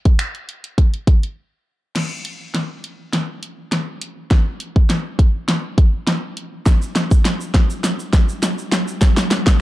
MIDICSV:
0, 0, Header, 1, 2, 480
1, 0, Start_track
1, 0, Tempo, 588235
1, 1596, Time_signature, 4, 2, 24, 8
1, 7842, End_track
2, 0, Start_track
2, 0, Title_t, "Drums"
2, 43, Note_on_c, 9, 42, 50
2, 45, Note_on_c, 9, 36, 90
2, 125, Note_off_c, 9, 42, 0
2, 126, Note_off_c, 9, 36, 0
2, 156, Note_on_c, 9, 26, 118
2, 157, Note_on_c, 9, 42, 99
2, 237, Note_off_c, 9, 26, 0
2, 239, Note_off_c, 9, 42, 0
2, 283, Note_on_c, 9, 42, 48
2, 365, Note_off_c, 9, 42, 0
2, 398, Note_on_c, 9, 42, 63
2, 479, Note_off_c, 9, 42, 0
2, 522, Note_on_c, 9, 42, 54
2, 604, Note_off_c, 9, 42, 0
2, 636, Note_on_c, 9, 36, 82
2, 638, Note_on_c, 9, 42, 86
2, 717, Note_off_c, 9, 36, 0
2, 719, Note_off_c, 9, 42, 0
2, 764, Note_on_c, 9, 42, 52
2, 846, Note_off_c, 9, 42, 0
2, 876, Note_on_c, 9, 36, 101
2, 877, Note_on_c, 9, 42, 64
2, 958, Note_off_c, 9, 36, 0
2, 959, Note_off_c, 9, 42, 0
2, 1007, Note_on_c, 9, 42, 53
2, 1089, Note_off_c, 9, 42, 0
2, 1596, Note_on_c, 9, 38, 51
2, 1596, Note_on_c, 9, 42, 87
2, 1596, Note_on_c, 9, 49, 90
2, 1677, Note_off_c, 9, 42, 0
2, 1678, Note_off_c, 9, 38, 0
2, 1678, Note_off_c, 9, 49, 0
2, 1835, Note_on_c, 9, 42, 78
2, 1917, Note_off_c, 9, 42, 0
2, 2076, Note_on_c, 9, 38, 52
2, 2077, Note_on_c, 9, 42, 95
2, 2158, Note_off_c, 9, 38, 0
2, 2159, Note_off_c, 9, 42, 0
2, 2317, Note_on_c, 9, 42, 62
2, 2399, Note_off_c, 9, 42, 0
2, 2556, Note_on_c, 9, 38, 58
2, 2557, Note_on_c, 9, 42, 85
2, 2637, Note_off_c, 9, 38, 0
2, 2638, Note_off_c, 9, 42, 0
2, 2796, Note_on_c, 9, 42, 68
2, 2878, Note_off_c, 9, 42, 0
2, 3035, Note_on_c, 9, 38, 61
2, 3035, Note_on_c, 9, 42, 100
2, 3116, Note_off_c, 9, 38, 0
2, 3117, Note_off_c, 9, 42, 0
2, 3276, Note_on_c, 9, 42, 70
2, 3358, Note_off_c, 9, 42, 0
2, 3515, Note_on_c, 9, 38, 68
2, 3515, Note_on_c, 9, 42, 87
2, 3516, Note_on_c, 9, 36, 114
2, 3597, Note_off_c, 9, 36, 0
2, 3597, Note_off_c, 9, 38, 0
2, 3597, Note_off_c, 9, 42, 0
2, 3754, Note_on_c, 9, 42, 82
2, 3836, Note_off_c, 9, 42, 0
2, 3884, Note_on_c, 9, 36, 86
2, 3966, Note_off_c, 9, 36, 0
2, 3996, Note_on_c, 9, 38, 67
2, 3996, Note_on_c, 9, 42, 101
2, 4077, Note_off_c, 9, 38, 0
2, 4078, Note_off_c, 9, 42, 0
2, 4234, Note_on_c, 9, 36, 85
2, 4237, Note_on_c, 9, 42, 65
2, 4316, Note_off_c, 9, 36, 0
2, 4318, Note_off_c, 9, 42, 0
2, 4475, Note_on_c, 9, 38, 76
2, 4476, Note_on_c, 9, 42, 89
2, 4557, Note_off_c, 9, 38, 0
2, 4558, Note_off_c, 9, 42, 0
2, 4715, Note_on_c, 9, 36, 102
2, 4716, Note_on_c, 9, 42, 68
2, 4797, Note_off_c, 9, 36, 0
2, 4797, Note_off_c, 9, 42, 0
2, 4955, Note_on_c, 9, 38, 79
2, 4956, Note_on_c, 9, 42, 96
2, 5037, Note_off_c, 9, 38, 0
2, 5038, Note_off_c, 9, 42, 0
2, 5197, Note_on_c, 9, 42, 74
2, 5279, Note_off_c, 9, 42, 0
2, 5435, Note_on_c, 9, 82, 69
2, 5436, Note_on_c, 9, 36, 118
2, 5436, Note_on_c, 9, 38, 82
2, 5436, Note_on_c, 9, 42, 90
2, 5517, Note_off_c, 9, 42, 0
2, 5517, Note_off_c, 9, 82, 0
2, 5518, Note_off_c, 9, 36, 0
2, 5518, Note_off_c, 9, 38, 0
2, 5564, Note_on_c, 9, 82, 54
2, 5646, Note_off_c, 9, 82, 0
2, 5676, Note_on_c, 9, 38, 83
2, 5676, Note_on_c, 9, 42, 79
2, 5676, Note_on_c, 9, 82, 43
2, 5757, Note_off_c, 9, 42, 0
2, 5758, Note_off_c, 9, 38, 0
2, 5758, Note_off_c, 9, 82, 0
2, 5803, Note_on_c, 9, 82, 55
2, 5805, Note_on_c, 9, 36, 90
2, 5885, Note_off_c, 9, 82, 0
2, 5886, Note_off_c, 9, 36, 0
2, 5915, Note_on_c, 9, 82, 58
2, 5917, Note_on_c, 9, 38, 89
2, 5918, Note_on_c, 9, 42, 105
2, 5997, Note_off_c, 9, 82, 0
2, 5998, Note_off_c, 9, 38, 0
2, 5999, Note_off_c, 9, 42, 0
2, 6042, Note_on_c, 9, 82, 50
2, 6124, Note_off_c, 9, 82, 0
2, 6155, Note_on_c, 9, 36, 91
2, 6156, Note_on_c, 9, 38, 91
2, 6157, Note_on_c, 9, 42, 67
2, 6236, Note_off_c, 9, 36, 0
2, 6238, Note_off_c, 9, 38, 0
2, 6239, Note_off_c, 9, 42, 0
2, 6284, Note_on_c, 9, 82, 52
2, 6366, Note_off_c, 9, 82, 0
2, 6396, Note_on_c, 9, 38, 91
2, 6397, Note_on_c, 9, 42, 86
2, 6397, Note_on_c, 9, 82, 77
2, 6478, Note_off_c, 9, 38, 0
2, 6478, Note_off_c, 9, 82, 0
2, 6479, Note_off_c, 9, 42, 0
2, 6524, Note_on_c, 9, 82, 49
2, 6605, Note_off_c, 9, 82, 0
2, 6636, Note_on_c, 9, 36, 100
2, 6636, Note_on_c, 9, 38, 95
2, 6636, Note_on_c, 9, 42, 70
2, 6637, Note_on_c, 9, 82, 45
2, 6717, Note_off_c, 9, 36, 0
2, 6718, Note_off_c, 9, 38, 0
2, 6718, Note_off_c, 9, 42, 0
2, 6719, Note_off_c, 9, 82, 0
2, 6763, Note_on_c, 9, 82, 50
2, 6844, Note_off_c, 9, 82, 0
2, 6876, Note_on_c, 9, 38, 94
2, 6876, Note_on_c, 9, 42, 108
2, 6876, Note_on_c, 9, 82, 77
2, 6957, Note_off_c, 9, 38, 0
2, 6957, Note_off_c, 9, 82, 0
2, 6958, Note_off_c, 9, 42, 0
2, 7003, Note_on_c, 9, 82, 47
2, 7085, Note_off_c, 9, 82, 0
2, 7116, Note_on_c, 9, 82, 52
2, 7117, Note_on_c, 9, 38, 96
2, 7118, Note_on_c, 9, 42, 75
2, 7198, Note_off_c, 9, 38, 0
2, 7198, Note_off_c, 9, 82, 0
2, 7199, Note_off_c, 9, 42, 0
2, 7243, Note_on_c, 9, 82, 54
2, 7324, Note_off_c, 9, 82, 0
2, 7356, Note_on_c, 9, 38, 99
2, 7356, Note_on_c, 9, 42, 91
2, 7356, Note_on_c, 9, 82, 68
2, 7357, Note_on_c, 9, 36, 115
2, 7437, Note_off_c, 9, 42, 0
2, 7438, Note_off_c, 9, 36, 0
2, 7438, Note_off_c, 9, 38, 0
2, 7438, Note_off_c, 9, 82, 0
2, 7483, Note_on_c, 9, 38, 103
2, 7485, Note_on_c, 9, 82, 59
2, 7565, Note_off_c, 9, 38, 0
2, 7566, Note_off_c, 9, 82, 0
2, 7596, Note_on_c, 9, 42, 85
2, 7596, Note_on_c, 9, 82, 44
2, 7597, Note_on_c, 9, 38, 101
2, 7678, Note_off_c, 9, 38, 0
2, 7678, Note_off_c, 9, 42, 0
2, 7678, Note_off_c, 9, 82, 0
2, 7723, Note_on_c, 9, 82, 55
2, 7724, Note_on_c, 9, 38, 109
2, 7725, Note_on_c, 9, 36, 92
2, 7804, Note_off_c, 9, 82, 0
2, 7806, Note_off_c, 9, 38, 0
2, 7807, Note_off_c, 9, 36, 0
2, 7842, End_track
0, 0, End_of_file